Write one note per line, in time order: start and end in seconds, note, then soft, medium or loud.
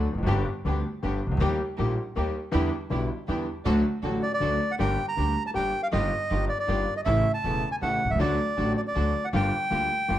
0.12 0.18 E1 soft
0.12 0.17 E2 soft
0.17 0.22 F1 medium
0.17 0.22 F2 medium
0.23 0.26 F#1 medium
0.23 0.43 G1 medium
0.23 0.27 F#2 medium
0.23 0.43 G2 medium
0.23 0.43 D3 medium
0.23 0.43 G3 medium
0.23 0.43 G4 medium
0.27 0.43 G1 medium
0.27 0.43 B3 medium
0.27 0.43 D4 medium
0.27 0.43 G4 medium
0.65 0.81 D2 medium
0.65 0.81 D3 medium
0.65 0.81 G3 soft
0.65 0.81 B3 soft
0.65 0.81 D4 soft
0.65 0.81 G4 medium
0.65 0.81 G4 soft
1.02 1.19 G1 soft
1.02 1.19 G1 medium
1.02 1.18 G2 medium
1.02 1.19 D3 soft
1.02 1.19 G3 soft
1.02 1.18 B3 soft
1.02 1.19 B3 soft
1.02 1.19 D4 soft
1.02 1.19 G4 soft
1.02 1.19 G4 medium
1.27 1.31 C2 soft
1.31 1.36 C#2 medium
1.37 1.41 D2 medium
1.37 1.56 D#2 medium
1.37 1.56 D#3 medium
1.37 1.57 G3 medium
1.37 1.56 A#3 medium
1.37 1.56 G4 medium
1.41 1.57 D#2 medium
1.41 1.57 D#4 medium
1.41 1.57 G4 medium
1.78 1.94 A#1 medium
1.78 1.94 A#2 medium
1.78 1.94 D#3 soft
1.78 1.94 G3 soft
1.78 1.94 A#3 soft
1.78 1.94 D#4 soft
1.78 1.94 G4 soft
1.78 1.94 G4 medium
2.16 2.32 D#2 medium
2.16 2.32 D#3 medium
2.16 2.31 G3 soft
2.16 2.32 A#3 soft
2.16 2.32 A#3 medium
2.16 2.32 D#4 soft
2.16 2.32 G4 medium
2.51 2.68 E2 medium
2.51 2.69 E2 medium
2.51 2.68 D3 medium
2.51 2.68 E3 medium
2.51 2.68 G3 medium
2.51 2.68 B3 medium
2.51 2.69 D4 medium
2.51 2.68 E4 medium
2.51 2.69 E4 medium
2.51 2.69 G4 medium
2.90 3.06 B1 medium
2.90 3.07 B1 medium
2.90 3.06 B2 medium
2.90 3.06 D3 soft
2.90 3.06 G3 soft
2.90 3.06 B3 soft
2.90 3.06 D4 soft
2.90 3.06 E4 medium
2.90 3.06 E4 soft
2.90 3.07 G4 medium
3.28 3.44 E2 medium
3.28 3.44 D3 soft
3.28 3.44 E3 medium
3.28 3.44 G3 soft
3.28 3.44 B3 soft
3.28 3.44 D4 soft
3.28 3.44 E4 medium
3.28 3.44 G4 medium
3.65 3.82 D2 medium
3.65 3.82 D3 medium
3.65 3.81 F#3 medium
3.65 3.81 A3 medium
3.65 3.82 D4 medium
3.65 3.82 F#4 medium
3.65 3.82 A4 medium
4.03 4.19 A1 medium
4.03 4.20 A1 medium
4.03 4.20 A2 medium
4.03 4.20 D3 soft
4.03 4.20 F#3 soft
4.03 4.20 A3 soft
4.03 4.19 D4 soft
4.03 4.19 F#4 soft
4.03 4.20 F#4 medium
4.03 4.19 A4 medium
4.23 4.32 D5 medium
4.34 4.72 D5 medium
4.40 4.57 D2 medium
4.40 4.57 D3 medium
4.40 4.57 F#3 soft
4.40 4.57 A3 soft
4.40 4.57 D4 medium
4.40 4.57 F#4 soft
4.40 4.58 A4 medium
4.71 4.75 F#5 medium
4.79 4.95 G1 medium
4.79 4.95 G2 medium
4.79 4.95 D3 medium
4.79 4.95 G3 medium
4.79 4.95 A#3 medium
4.79 4.95 D4 medium
4.79 4.95 G4 medium
4.79 4.96 A#4 medium
4.79 5.06 G5 medium
5.08 5.43 A#5 medium
5.16 5.33 D2 soft
5.16 5.33 D2 medium
5.16 5.33 D3 soft
5.16 5.33 G3 soft
5.16 5.33 A#3 soft
5.16 5.33 D4 soft
5.16 5.33 G4 soft
5.16 5.33 A#4 soft
5.47 5.51 A5 medium
5.54 5.70 G1 soft
5.54 5.71 G1 medium
5.54 5.70 G2 soft
5.54 5.70 D3 soft
5.54 5.70 G3 soft
5.54 5.70 A#3 soft
5.54 5.71 D4 soft
5.54 5.71 G4 soft
5.54 5.71 A#4 soft
5.54 5.81 G5 medium
5.83 5.88 F5 medium
5.92 6.08 G1 medium
5.92 6.09 G1 medium
5.92 6.08 G2 medium
5.92 6.08 D#3 medium
5.92 6.09 G3 medium
5.92 6.09 A#3 medium
5.92 6.08 D#4 medium
5.92 6.08 F4 medium
5.92 6.09 F4 medium
5.92 6.09 G4 medium
5.92 6.45 D#5 medium
6.30 6.47 G1 medium
6.30 6.47 G2 medium
6.30 6.47 D#3 soft
6.30 6.47 G3 soft
6.30 6.47 A#3 soft
6.30 6.46 D#4 soft
6.30 6.46 F4 soft
6.30 6.47 F4 medium
6.30 6.46 G4 soft
6.49 6.58 D5 medium
6.60 6.94 D5 medium
6.68 6.84 G1 medium
6.68 6.84 G2 medium
6.68 6.84 D#3 soft
6.68 6.84 G3 soft
6.68 6.84 A#3 soft
6.68 6.84 D#4 soft
6.68 6.84 F4 soft
6.68 6.84 G4 medium
6.97 7.01 D#5 medium
7.05 7.22 A1 medium
7.05 7.22 A2 medium
7.05 7.22 C#3 medium
7.05 7.22 E3 medium
7.05 7.22 A3 medium
7.05 7.22 C#4 medium
7.05 7.22 E4 medium
7.05 7.22 A4 medium
7.05 7.32 E5 medium
7.34 7.69 A5 medium
7.44 7.60 E1 medium
7.44 7.60 E2 soft
7.44 7.60 C#3 soft
7.44 7.60 E3 soft
7.44 7.61 A3 soft
7.44 7.60 C#4 soft
7.44 7.60 E4 soft
7.44 7.61 E4 soft
7.44 7.60 A4 soft
7.72 7.76 G#5 medium
7.82 7.97 A1 medium
7.82 7.98 A1 medium
7.82 7.98 A2 soft
7.82 7.97 C#3 soft
7.82 7.98 E3 soft
7.82 7.98 A3 soft
7.82 7.98 C#4 soft
7.82 7.98 E4 soft
7.82 7.98 A4 medium
7.82 8.11 F#5 medium
8.05 8.10 B1 soft
8.10 8.15 C2 medium
8.10 8.19 E5 medium
8.15 8.19 C#2 medium
8.15 8.20 C#2 medium
8.15 8.35 D3 medium
8.15 8.35 F#3 medium
8.19 8.35 D2 medium
8.19 8.36 D2 medium
8.19 8.35 A3 medium
8.19 8.35 D4 medium
8.19 8.35 F#4 medium
8.19 8.36 F#4 medium
8.19 8.36 A4 medium
8.19 8.73 D5 medium
8.57 8.73 A1 soft
8.57 8.73 A1 medium
8.57 8.73 A2 medium
8.57 8.73 D3 soft
8.57 8.73 F#3 soft
8.57 8.74 A3 soft
8.57 8.73 D4 soft
8.57 8.73 F#4 soft
8.57 8.74 F#4 soft
8.57 8.73 A4 soft
8.77 8.81 D5 medium
8.87 9.26 D5 medium
8.95 9.11 D2 soft
8.95 9.12 D2 medium
8.95 9.11 D3 soft
8.95 9.12 F#3 soft
8.95 9.11 A3 soft
8.95 9.11 D4 soft
8.95 9.11 F#4 soft
8.95 9.12 F#4 soft
8.95 9.11 A4 medium
9.25 9.29 F#5 medium
9.33 9.49 G1 medium
9.33 9.49 G2 medium
9.33 9.49 D3 medium
9.33 9.49 G3 medium
9.33 9.49 A#3 medium
9.33 9.49 F4 medium
9.33 9.49 G4 medium
9.33 10.19 G5 medium
9.70 9.87 D2 soft
9.70 9.87 D2 medium
9.70 9.87 D3 soft
9.70 9.87 G3 soft
9.70 9.87 A#3 soft
9.70 9.87 F4 soft
9.70 9.87 G4 soft
10.08 10.19 G1 medium
10.08 10.19 G2 soft
10.08 10.19 D3 soft
10.08 10.19 G3 soft
10.08 10.19 A#3 soft
10.08 10.19 F4 soft
10.08 10.19 G4 soft